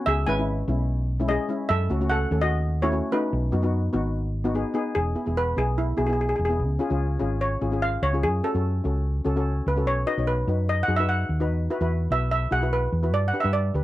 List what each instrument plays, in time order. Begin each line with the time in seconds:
0.06 fingered electric bass C#2, steel pan G#4 E5
0.27 fingered electric bass G#1, steel pan G#3 C#4 E4 B4 G#5
0.38 steel pan G#3 C#4 E4
0.68 fingered electric bass B1, steel pan G#3 C#4 E4
1.19 steel pan G#3 C#4 E4
1.28 steel pan G#3 C#4 E4 G#4 D#5
1.49 steel pan G#3 C#4 E4
1.69 fingered electric bass F#2, steel pan A4 E5
1.90 fingered electric bass C#2, steel pan A3 C#4 F#4
2.01 steel pan A3 C#4 F#4
2.10 steel pan A4 F#5
2.31 fingered electric bass D#2, steel pan A3 C#4 A4
2.42 steel pan F#4 D#5
2.82 steel pan A3 C#4 E4 F#4 C#5
2.92 steel pan A3 C#4 F#4
3.12 steel pan A3 C#4 D#4 F#4 B4
3.33 fingered electric bass B1
3.52 fingered electric bass F#2, steel pan B3 D#4 F#4
3.62 steel pan B3 D#4 F#4
3.93 fingered electric bass G#1, steel pan B3 D#4 F#4
4.44 steel pan B3 D#4 F#4
4.54 steel pan B3 D#4 G#4
4.74 steel pan B3 D#4 G#4
4.95 fingered electric bass E1, steel pan G#4
5.15 steel pan B3 E4 G#4
5.26 fingered electric bass E1, steel pan B3 E4 G#4
5.37 steel pan B4
5.56 fingered electric bass B1, steel pan B3 E4 G#4
5.78 steel pan E4
5.97 fingered electric bass B1, steel pan B3 E4 F#4 G#4
6.06 steel pan B3 E4 G#4
6.13 steel pan G#4
6.21 steel pan G#4
6.29 steel pan G#4
6.36 fingered electric bass E1, steel pan G#4
6.45 steel pan G#4
6.49 steel pan B3 E4 G#4
6.59 fingered electric bass C#2
6.79 steel pan C#4 F4 G#4
6.90 fingered electric bass C#2, steel pan C#4 F4 G#4
7.19 fingered electric bass G#1, steel pan C#4 F4 G#4
7.41 steel pan C#5
7.61 fingered electric bass G#1, steel pan C#4 F4 G#4
7.72 steel pan C#4 F4 G#4
7.82 steel pan F5
8.02 fingered electric bass C#2, steel pan C#5
8.13 steel pan C#4 F4 G#4
8.23 fingered electric bass F#2, steel pan G#4
8.44 steel pan C#4 F#4 A4
8.54 fingered electric bass F#2, steel pan C#4 F#4 A4
8.84 fingered electric bass C#2, steel pan C#4 F#4 A4
9.25 fingered electric bass C#2, steel pan C#4 F#4 A4
9.36 steel pan C#4 F#4 A4
9.66 fingered electric bass C#2, steel pan B4
9.76 steel pan C#4 F#4 A4
9.86 fingered electric bass B1, steel pan C#5
10.06 steel pan D#4 F#4 B4 D#5
10.18 fingered electric bass B1, steel pan D#4 F#4 C#5
10.27 steel pan B4
10.47 fingered electric bass F#2, steel pan D#4 F#4 B4
10.69 steel pan D#5
10.83 steel pan F#5
10.88 fingered electric bass F#2, steel pan D#4 F#4 G#4
10.96 steel pan D#4 F#4 B4 E5
11.09 steel pan F#5
11.29 fingered electric bass D#2
11.40 steel pan D#4 F#4 B4
11.49 fingered electric bass E2
11.70 steel pan E4 F#4 B4
11.81 fingered electric bass E2, steel pan E4 F#4 B4
12.10 fingered electric bass B1, steel pan E4 F#4 B4 E5
12.31 steel pan E5
12.51 fingered electric bass B1, steel pan E4 F#4 G#4 F#5
12.62 steel pan E4 F#4 B4
12.73 steel pan B4
12.92 fingered electric bass E2
13.03 steel pan E4 F#4 B4
13.13 fingered electric bass G2, steel pan D5
13.28 steel pan F#5
13.33 steel pan D4 G4 B4
13.40 steel pan D4 E5
13.44 fingered electric bass G2, steel pan G4 B4
13.53 steel pan D5
13.74 fingered electric bass D2, steel pan D4 G4 B4